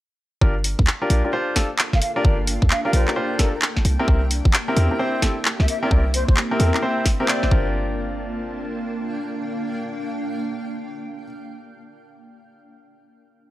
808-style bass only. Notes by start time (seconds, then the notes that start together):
0.41 G1
0.79 D2
1.10 A#1
1.93 G1
2.25 G1
2.62 D2
2.93 A#1
3.85 C2
4.08 C2
4.45 G1
4.77 E2
5.60 C2
5.91 C2
6.28 G1
6.60 E2
7.51 G1